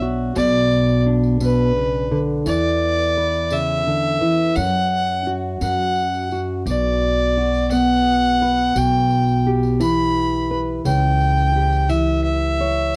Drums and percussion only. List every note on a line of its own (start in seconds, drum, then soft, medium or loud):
0.36 tambourine loud
0.72 tambourine soft
0.88 tambourine soft
1.24 tambourine soft
1.41 tambourine medium
2.46 tambourine loud
2.99 tambourine soft
3.34 tambourine soft
3.50 tambourine medium
4.56 tambourine medium
5.61 tambourine medium
5.96 tambourine soft
6.14 tambourine soft
6.31 tambourine soft
6.67 tambourine medium
7.19 tambourine soft
7.54 tambourine soft
7.71 tambourine medium
8.76 tambourine loud
9.11 tambourine soft
9.28 tambourine soft
9.63 tambourine soft
9.81 tambourine medium
10.85 tambourine loud
11.21 tambourine soft
11.38 tambourine soft
11.73 tambourine soft
11.90 tambourine medium